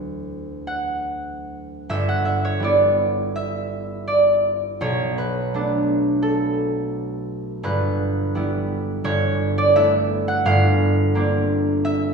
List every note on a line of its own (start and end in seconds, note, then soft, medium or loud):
0.00 1.90 D2 soft
0.00 1.91 F#3 soft
0.00 2.30 B3 soft
0.00 2.31 E4 soft
0.00 1.93 A4 medium
0.00 1.90 B4 medium
0.67 1.93 F#5 medium
1.89 4.84 G1 soft
1.89 2.24 E5 medium
2.09 2.39 F#5 medium
2.25 2.56 E5 medium
2.45 2.75 C#5 medium
2.60 4.84 G3 soft
2.60 5.54 B3 soft
2.60 4.84 E4 soft
2.64 4.06 D5 medium
3.36 4.84 E5 medium
4.08 7.98 D5 medium
4.81 7.67 B1 medium
4.81 5.43 C#5 medium
5.18 7.63 B4 medium
5.54 7.68 A3 soft
5.54 8.34 B3 soft
5.54 9.09 D4 soft
6.22 7.67 A4 medium
7.63 9.03 G1 medium
7.63 10.48 B4 medium
8.35 10.48 G3 soft
8.35 9.75 B3 soft
8.35 9.75 E4 soft
9.04 10.44 G1 medium
9.04 10.48 C#5 medium
9.58 9.88 D5 medium
9.75 10.49 A3 soft
9.75 10.49 B3 soft
9.75 10.49 E4 soft
9.75 10.48 E5 medium
10.28 10.58 F#5 medium
10.45 12.14 G1 medium
10.45 12.14 F5 medium
11.15 12.14 A#3 soft
11.15 12.14 C4 soft
11.15 12.14 D4 soft
11.85 12.14 E5 medium